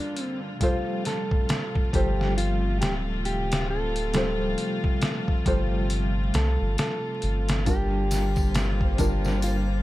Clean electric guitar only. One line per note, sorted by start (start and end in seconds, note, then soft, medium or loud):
0.00 0.23 D4 medium
0.23 0.39 C4 medium
0.63 1.06 F4 loud
1.07 1.95 A4 loud
1.95 2.35 G4 medium
2.37 2.81 F4 loud
2.81 2.93 G4 medium
3.26 3.70 G4 loud
3.70 6.31 A4 loud
6.35 6.76 A4 medium
6.79 7.66 A4 loud
7.67 9.39 G4 loud
9.44 9.56 F4 medium